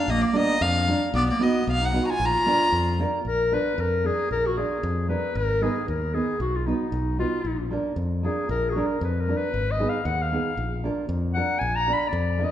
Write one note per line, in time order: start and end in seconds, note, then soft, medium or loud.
0.00 0.12 D4 medium
0.00 0.11 F5 medium
0.08 0.24 A#1 loud
0.08 0.25 A#3 loud
0.08 0.23 D#5 medium
0.21 0.38 D5 medium
0.25 0.39 A#3 medium
0.33 0.54 A#3 medium
0.33 0.63 B3 medium
0.33 0.54 D4 medium
0.33 0.55 F4 medium
0.33 0.55 A#4 medium
0.33 0.63 D#5 loud
0.61 0.93 F2 loud
0.61 1.02 D4 medium
0.61 1.02 F5 loud
0.88 1.08 A#3 medium
0.88 1.08 D4 soft
0.88 1.08 F4 medium
0.88 1.08 A#4 medium
1.14 1.30 B1 loud
1.14 1.27 B3 loud
1.14 1.27 D5 loud
1.30 1.43 A#3 medium
1.30 1.44 D5 medium
1.39 1.60 B3 medium
1.39 1.67 B3 medium
1.39 1.60 D#4 medium
1.39 1.61 F#4 medium
1.39 1.61 B4 medium
1.39 1.68 D#5 medium
1.67 1.99 B1 medium
1.67 1.83 B3 medium
1.71 1.86 F5 loud
1.82 2.02 D#4 medium
1.82 2.06 F#5 medium
1.92 2.13 B3 medium
1.92 2.13 D#4 soft
1.92 2.13 F#4 medium
1.92 2.14 B4 medium
2.03 2.11 F#4 medium
2.03 2.12 A#5 medium
2.09 2.23 F4 medium
2.09 2.27 G#5 loud
2.20 2.35 A#1 medium
2.20 3.00 F4 loud
2.25 3.01 A#5 loud
2.46 2.66 A#3 medium
2.46 2.66 D4 medium
2.46 2.66 F4 medium
2.46 2.67 A#4 medium
2.72 3.04 F2 medium
2.99 3.19 A#3 medium
2.99 3.19 D4 medium
2.99 3.20 F4 medium
2.99 3.20 A#4 medium
3.25 3.56 A#1 medium
3.25 3.56 A#4 loud
3.52 3.72 A#3 medium
3.52 3.72 D4 medium
3.52 3.72 F4 medium
3.52 3.72 A#4 medium
3.52 3.82 B4 loud
3.78 4.09 F2 medium
3.78 4.07 A#4 medium
4.04 4.24 A#3 medium
4.04 4.24 D4 soft
4.04 4.24 F4 soft
4.04 4.31 G#4 loud
4.04 4.25 A#4 soft
4.31 4.62 A#1 medium
4.31 4.48 A#4 loud
4.47 4.59 F#4 loud
4.56 4.77 A#3 medium
4.56 4.77 D4 medium
4.56 4.77 F4 medium
4.56 5.09 G#4 medium
4.56 4.78 A#4 medium
4.83 5.15 F2 medium
5.08 5.29 A#3 soft
5.08 5.29 D4 medium
5.08 5.30 F4 soft
5.08 5.30 A#4 medium
5.08 5.38 B4 loud
5.35 5.67 G#1 medium
5.35 5.64 A#4 loud
5.61 5.82 B3 medium
5.61 5.82 D#4 medium
5.61 5.82 G#4 medium
5.61 5.88 G#4 medium
5.61 5.83 B4 medium
5.88 6.20 D#2 medium
5.88 6.16 A#4 medium
6.13 6.34 B3 medium
6.13 6.34 D#4 soft
6.13 6.41 G#4 loud
6.13 6.35 G#4 soft
6.13 6.35 B4 medium
6.40 6.72 B1 medium
6.40 6.57 F#4 medium
6.56 6.69 F4 medium
6.66 6.86 B3 medium
6.66 6.87 D#4 medium
6.66 7.19 D#4 medium
6.66 6.87 F#4 medium
6.66 6.87 B4 medium
6.92 7.24 B1 medium
7.18 7.39 B3 soft
7.18 7.39 D#4 soft
7.18 7.68 F4 medium
7.18 7.39 F#4 soft
7.18 7.39 B4 medium
7.45 7.76 A#1 medium
7.71 7.91 A#3 medium
7.71 7.92 D4 medium
7.71 7.92 F4 medium
7.71 7.92 A#4 medium
7.96 8.28 F2 medium
8.23 8.43 A#3 medium
8.23 8.44 D4 soft
8.23 8.44 F4 medium
8.23 8.49 G#4 medium
8.23 8.44 A#4 medium
8.49 8.81 A#1 medium
8.49 8.71 A#4 medium
8.69 8.77 F#4 medium
8.69 8.73 G#4 medium
8.75 8.96 A#3 medium
8.75 8.96 D4 medium
8.75 8.96 F4 medium
8.75 8.88 G#4 medium
8.75 8.97 A#4 medium
8.86 9.03 A#4 medium
9.01 9.33 F2 medium
9.01 9.23 B4 medium
9.21 9.39 A#4 medium
9.28 9.48 A#3 medium
9.28 9.48 D4 soft
9.28 9.49 F4 soft
9.28 9.49 A#4 medium
9.37 9.73 B4 medium
9.54 9.85 G#1 medium
9.71 9.91 D#5 loud
9.79 10.00 B3 medium
9.79 10.00 D#4 medium
9.79 10.00 G#4 medium
9.79 10.01 B4 medium
9.89 10.08 F5 medium
10.05 10.37 D#2 medium
10.05 10.24 F#5 medium
10.22 10.75 F5 medium
10.32 10.52 B3 medium
10.32 10.52 D#4 soft
10.32 10.53 G#4 medium
10.32 10.53 B4 medium
10.57 10.89 A#1 medium
10.84 11.04 A#3 medium
10.84 11.04 D4 medium
10.84 11.05 F4 medium
10.84 11.05 A#4 medium
11.09 11.40 F2 medium
11.34 11.56 A#3 soft
11.34 11.56 D4 soft
11.34 11.56 F4 medium
11.34 11.56 A#4 medium
11.34 11.60 F#5 loud
11.59 11.93 A#1 medium
11.59 11.77 G#5 loud
11.76 11.95 A#5 loud
11.87 12.07 A#3 medium
11.87 12.07 D4 medium
11.87 12.08 F4 medium
11.87 12.08 A#4 medium
11.93 12.10 B5 loud
12.08 12.46 D5 loud
12.13 12.44 F2 loud
12.38 12.51 A#3 medium
12.38 12.51 D4 medium
12.38 12.51 F4 soft
12.38 12.51 A#4 medium
12.44 12.51 D#5 medium